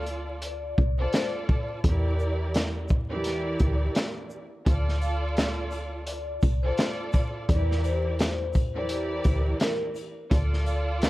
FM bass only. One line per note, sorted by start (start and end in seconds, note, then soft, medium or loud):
0.00 0.74 D2 loud
0.78 1.07 C2 loud
1.84 3.57 E2 loud
3.60 3.90 D2 medium
4.67 6.39 D2 loud
6.43 6.72 C2 medium
7.49 9.21 E2 loud
9.25 9.54 D2 medium
10.31 11.10 D2 loud